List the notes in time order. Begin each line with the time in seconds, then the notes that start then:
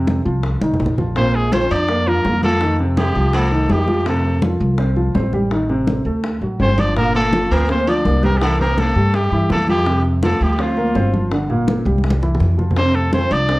Already playing: F2 C3 C4
0.07 high bongo, high conga
0.25 C2 F3 F4, high conga
0.43 high bongo, high conga
0.62 C2 D#3 D#4, high bongo, high conga
0.74 low conga
0.80 A#1, high bongo, low bongo
0.86 low conga
0.98 F3 F4, high bongo, low conga
1.16 A#2 A#3 C4 C5, high bongo, high conga
1.34 G#3 G#4, high bongo, high conga
1.52 F3 C4 F4 C5, high bongo, high conga
1.70 F2 D4 D5, high conga
1.89 A#3 A#4, high bongo, high conga
2.07 F3 A#3 F4 A#4, high bongo, high conga
2.25 F2 A#3 A#4, high bongo, low bongo, high conga
2.42 F3 A3 F4 A4, high bongo, high conga
2.61 D#3 D#4, high bongo, high conga
2.79 C3 C4, high bongo, high conga
2.97 G3 G4, high bongo, high conga
3.15 C2 F3 F4, high conga
3.33 A3 A4, high bongo, high conga
3.51 D#3 D#4, high bongo, high conga
3.69 F2 G3 G4, high bongo, low bongo, high conga
3.88 F3 F4, high bongo, high conga
4.06 C3 A3 C4 A4, high bongo, high conga
4.24 high bongo, high conga
4.42 F3 F4, high bongo, high conga
4.60 C2, high conga
4.78 C4 C5, high bongo, high conga
4.96 F3 F4, high bongo, high conga
5.14 A1 C4 C5, high bongo, low bongo, high conga
5.33 G3 G4, high bongo, high conga
5.51 D#3 D#4, high bongo, high conga
5.69 C3 C4, high bongo, high conga
5.87 high bongo, high conga
6.05 D2 A3 A4, high conga
6.24 high bongo, high conga
6.41 A1 F#3 F#4, high bongo, high conga
6.60 G1 C4 C5, high bongo, low bongo, high conga
6.78 F3 D4 F4 D5, high bongo, high conga
6.96 A#2 A#3 A#4, high bongo, high conga
7.14 A3 A4, high bongo, high conga
7.33 F3 F4, high bongo, high conga
7.51 D2 A#3 A#4, high conga
7.69 A#3 C4 A#4 C5, high bongo, high conga
7.87 F3 D4 F4 D5, high bongo, high conga
8.05 C2 A#3 A#4, high bongo, low bongo, high conga
8.23 G3 A#3 G4 A#4, high bongo, high conga
8.36 G3 G4
8.41 E3 A3 E4 A4, high bongo, high conga
8.59 C3 A#3 C4 A#4, high bongo, high conga
8.78 A3 A4, high bongo, high conga
8.95 G2 G3 G4, high conga
9.14 G3 G4, high bongo, high conga
9.31 G2 E3 E4, high bongo, high conga
9.50 F2 A3 A4, high bongo, low bongo, high conga
9.68 F3 G3 F4 G4, high bongo, high conga
9.86 C3 C4, high bongo, high conga
10.04 high bongo, high conga
10.22 F3 A3 F4 A4, high bongo, high conga
10.40 D2 G3 G4, high conga
10.59 F3 C4 F4 C5, high bongo, high conga
10.77 A#3 A#4, high bongo, high conga
10.95 G1 C4 C5, high bongo, low bongo, high conga
11.13 F3 F4, high bongo, high conga
11.31 D3 D4, high bongo, high conga
11.50 A#2 A#3, high bongo, high conga
11.68 high bongo, high conga
11.85 C2 G3 G4, high conga
11.98 high conga
12.04 high bongo
12.10 high conga
12.22 E3 E4, high bongo, low conga
12.35 low conga
12.40 F2, high bongo, low bongo
12.58 F3 F4, high bongo, low conga
12.71 low conga
12.76 C3 C4 C5, high bongo, high conga
12.95 A3 A4, high bongo, high conga
13.13 F3 C4 F4 C5, high bongo, high conga
13.31 C2 D4 D5, high conga
13.49 C4 C5, high bongo, high conga